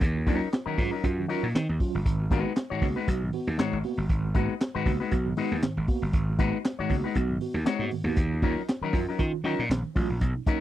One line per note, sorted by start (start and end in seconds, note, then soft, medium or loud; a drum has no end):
0.01 0.22 D#2 medium
0.01 0.17 D#3 medium
0.01 kick loud
0.01 closed hi-hat medium
0.16 0.20 C#4 soft
0.16 0.20 F4 soft
0.26 0.38 D#2 medium
0.26 0.47 F#3 medium
0.26 0.43 F#3 medium
0.26 0.48 C#4 medium
0.26 0.43 C#4 medium
0.26 0.48 D#4 medium
0.26 0.43 F4 medium
0.26 0.48 A#4 medium
0.26 kick medium
0.26 open hi-hat medium
0.52 0.58 C#4 soft
0.52 0.58 F4 soft
0.52 snare loud
0.52 clap medium
0.52 closed hi-hat medium
0.66 0.80 D#3 medium
0.66 0.83 F#3 medium
0.66 0.83 C#4 medium
0.66 0.83 D#4 medium
0.66 0.82 A#4 medium
0.66 muted slap bass stroke soft
0.78 0.89 G#2 loud
0.78 0.93 F#3 medium
0.78 0.94 C#4 medium
0.78 0.94 F4 medium
0.78 kick medium
0.78 open hi-hat medium
0.91 1.05 F#3 soft
0.91 1.04 C#4 soft
0.91 1.04 D#4 medium
0.91 1.04 A#4 medium
1.03 1.25 F#2 medium
1.03 1.19 C#4 medium
1.03 1.19 F4 medium
1.03 kick medium
1.03 closed hi-hat medium
1.19 1.31 D#3 medium
1.28 1.47 F#3 medium
1.28 1.47 C#4 medium
1.28 1.45 C#4 medium
1.28 1.47 D#4 medium
1.28 1.45 F4 medium
1.28 1.48 A#4 medium
1.28 open hi-hat medium
1.43 1.52 A#2 medium
1.55 1.66 D#3 loud
1.55 1.70 D#3 medium
1.55 snare loud
1.55 clap medium
1.55 closed hi-hat medium
1.69 1.78 D#2 medium
1.80 1.96 F#3 medium
1.80 1.94 C#4 medium
1.80 1.94 F4 medium
1.80 kick medium
1.80 open hi-hat medium
1.95 2.05 G1 medium
1.95 1.99 C#4 soft
1.95 1.99 F4 soft
2.05 2.26 G#1 loud
2.05 2.21 G#2 medium
2.05 2.21 D#3 medium
2.05 kick loud
2.05 closed hi-hat medium
2.21 2.25 B3 soft
2.21 2.25 F#4 soft
2.31 2.43 G#1 medium
2.31 2.52 G#3 medium
2.31 2.47 A#3 medium
2.31 2.47 B3 medium
2.31 2.52 D#4 medium
2.31 2.52 F#4 medium
2.31 2.47 F#4 medium
2.31 2.52 B4 medium
2.31 kick loud
2.31 closed hi-hat medium
2.56 2.62 B3 soft
2.56 2.62 F#4 soft
2.56 snare loud
2.56 clap medium
2.56 closed hi-hat medium
2.70 2.84 G#2 medium
2.70 2.84 D#3 medium
2.70 2.88 G#3 medium
2.70 2.87 D#4 medium
2.70 2.87 F#4 medium
2.70 2.87 C#5 medium
2.70 muted slap bass stroke soft
2.82 2.94 C#2 medium
2.82 2.98 A#3 medium
2.82 2.98 B3 medium
2.82 2.98 F#4 medium
2.82 kick medium
2.82 open hi-hat medium
2.96 3.09 G#3 medium
2.96 3.08 D#4 medium
2.96 3.08 F#4 medium
2.96 3.08 B4 medium
3.07 3.29 B1 medium
3.07 3.23 B3 medium
3.07 3.23 F#4 medium
3.07 kick medium
3.07 closed hi-hat medium
3.22 3.35 G#2 soft
3.22 3.35 D#3 medium
3.33 3.49 B3 medium
3.33 3.49 F#4 medium
3.33 open hi-hat medium
3.47 3.56 D#2 medium
3.58 3.74 G#2 medium
3.58 3.74 D#3 medium
3.58 3.76 G#3 medium
3.58 3.77 D#4 medium
3.58 3.77 F#4 medium
3.58 3.77 C#5 medium
3.58 muted slap bass stroke soft
3.58 snare loud
3.58 clap medium
3.58 closed hi-hat medium
3.73 3.82 G#1 medium
3.84 4.00 A#3 medium
3.84 3.98 B3 medium
3.84 3.97 F#4 medium
3.84 open hi-hat medium
3.98 4.09 G1 medium
3.98 4.03 B3 soft
3.98 4.03 F#4 soft
4.09 4.30 G#1 loud
4.09 4.25 G#2 medium
4.09 4.25 D#3 medium
4.09 kick loud
4.09 closed hi-hat medium
4.25 4.29 B3 soft
4.25 4.29 F#4 soft
4.34 4.47 G#1 medium
4.34 4.53 G#3 medium
4.34 4.51 A#3 medium
4.34 4.51 B3 medium
4.34 4.53 D#4 medium
4.34 4.54 F#4 medium
4.34 4.51 F#4 medium
4.34 4.54 B4 medium
4.34 kick loud
4.34 closed hi-hat medium
4.61 4.66 B3 soft
4.61 4.66 F#4 soft
4.61 snare loud
4.61 clap medium
4.61 closed hi-hat medium
4.75 4.88 G#2 medium
4.75 4.88 D#3 medium
4.75 4.91 G#3 medium
4.75 4.91 D#4 medium
4.75 4.91 F#4 medium
4.75 4.91 B4 medium
4.75 muted slap bass stroke soft
4.86 4.98 C#2 loud
4.86 5.01 A#3 medium
4.86 5.02 B3 medium
4.86 5.02 F#4 medium
4.86 kick medium
4.86 open hi-hat medium
5.00 5.13 G#3 medium
5.00 5.13 D#4 medium
5.00 5.13 F#4 medium
5.00 5.12 B4 medium
5.11 5.32 B1 loud
5.11 5.27 B3 medium
5.11 5.27 F#4 medium
5.11 kick medium
5.11 closed hi-hat medium
5.26 5.39 G#2 medium
5.26 5.39 D#3 medium
5.37 5.55 G#3 medium
5.37 5.53 B3 medium
5.37 5.55 D#4 medium
5.37 5.53 F#4 medium
5.37 5.56 F#4 medium
5.37 5.56 B4 medium
5.37 open hi-hat medium
5.52 5.61 D#2 medium
5.62 5.78 G#2 medium
5.62 5.78 D#3 medium
5.62 muted slap bass stroke soft
5.62 snare loud
5.62 clap medium
5.62 closed hi-hat medium
5.77 5.86 G#1 medium
5.88 6.04 A#3 medium
5.88 6.02 B3 medium
5.88 6.02 F#4 medium
5.88 kick medium
5.88 open hi-hat medium
6.02 6.13 G1 medium
6.02 6.07 B3 soft
6.02 6.07 F#4 soft
6.13 6.35 G#1 loud
6.13 6.29 G#2 medium
6.13 6.29 D#3 medium
6.13 kick loud
6.13 closed hi-hat medium
6.29 6.33 B3 soft
6.29 6.33 F#4 soft
6.39 6.51 G#1 medium
6.39 6.57 G#3 medium
6.39 6.55 A#3 medium
6.39 6.55 B3 medium
6.39 6.57 D#4 medium
6.39 6.57 F#4 medium
6.39 6.55 F#4 medium
6.39 6.58 B4 medium
6.39 kick medium
6.39 closed hi-hat medium
6.65 6.71 B3 soft
6.65 6.71 F#4 soft
6.65 snare loud
6.65 clap medium
6.65 closed hi-hat medium
6.79 6.92 G#2 medium
6.79 6.92 D#3 medium
6.79 6.96 G#3 medium
6.79 6.96 D#4 medium
6.79 6.96 F#4 medium
6.79 6.95 C#5 medium
6.79 muted slap bass stroke soft
6.90 7.02 C#2 loud
6.90 7.06 A#3 medium
6.90 7.06 B3 medium
6.90 7.06 F#4 medium
6.90 kick medium
6.90 open hi-hat medium
7.04 7.17 G#3 medium
7.04 7.17 D#4 medium
7.04 7.17 F#4 medium
7.04 7.16 B4 medium
7.15 7.37 B1 loud
7.15 7.31 B3 medium
7.15 7.31 F#4 medium
7.15 kick medium
7.15 closed hi-hat medium
7.29 7.43 G#2 medium
7.29 7.43 D#3 soft
7.41 7.57 B3 medium
7.41 7.57 F#4 medium
7.41 open hi-hat medium
7.54 7.64 D#2 medium
7.65 7.84 G#3 medium
7.65 7.84 D#4 medium
7.65 7.84 F#4 medium
7.65 7.85 C#5 medium
7.65 muted slap bass stroke soft
7.65 snare loud
7.65 clap medium
7.65 closed hi-hat medium
7.79 7.89 G#2 medium
7.79 7.94 A#3 medium
7.79 7.94 B3 medium
7.79 7.94 F#4 medium
7.91 8.08 G#2 medium
7.91 8.08 D#3 medium
7.91 open hi-hat medium
8.04 8.14 D#2 medium
8.04 8.19 A#3 medium
8.04 8.19 B3 medium
8.04 8.19 F#4 medium
8.16 8.38 D#2 loud
8.16 8.33 D#3 medium
8.16 kick loud
8.16 closed hi-hat medium
8.32 8.36 C#4 soft
8.32 8.36 F4 soft
8.42 8.54 D#2 medium
8.42 8.61 F#3 medium
8.42 8.58 F#3 medium
8.42 8.58 C#4 medium
8.42 8.61 C#4 medium
8.42 8.61 D#4 medium
8.42 8.59 F4 medium
8.42 8.62 A#4 medium
8.42 kick loud
8.42 open hi-hat medium
8.68 snare loud
8.68 clap medium
8.68 closed hi-hat medium
8.81 8.96 D#3 medium
8.81 9.00 F#3 medium
8.81 8.99 C#4 medium
8.81 8.99 D#4 medium
8.81 8.99 A#4 medium
8.81 muted slap bass stroke soft
8.93 9.05 F#2 medium
8.93 9.09 F#3 medium
8.93 9.09 C#4 medium
8.93 9.10 F4 medium
8.93 kick medium
8.93 open hi-hat medium
9.09 9.21 F#3 medium
9.09 9.21 C#4 soft
9.09 9.21 D#4 medium
9.09 9.20 A#4 medium
9.18 9.31 D#3 loud
9.18 9.35 C#4 medium
9.18 9.35 F4 medium
9.18 kick medium
9.18 closed hi-hat medium
9.33 9.46 D#3 medium
9.44 9.56 D#3 loud
9.44 9.63 F#3 medium
9.44 9.61 C#4 medium
9.44 9.63 C#4 medium
9.44 9.63 D#4 medium
9.44 9.61 F4 medium
9.44 9.64 A#4 medium
9.44 open hi-hat medium
9.59 9.69 A#2 loud
9.69 9.82 A#1 medium
9.69 9.86 D#3 medium
9.69 snare loud
9.69 clap medium
9.69 closed hi-hat medium
9.95 10.08 A1 loud
9.95 10.11 F#3 medium
9.95 10.09 C#4 medium
9.95 10.10 F4 medium
9.95 kick medium
9.95 open hi-hat medium
10.09 10.19 A#1 medium
10.09 10.15 C#4 soft
10.09 10.15 F4 soft
10.21 10.33 B1 loud
10.21 10.38 B2 medium
10.21 10.38 F#3 medium
10.21 kick medium
10.21 closed hi-hat medium
10.36 10.41 C#4 soft
10.36 10.41 D#4 soft
10.46 10.60 F#3 medium
10.46 10.60 A#3 medium
10.46 10.60 C#4 medium
10.46 10.60 D#4 medium
10.46 10.60 A#4 medium
10.46 muted slap bass stroke soft
10.46 kick loud
10.46 closed hi-hat medium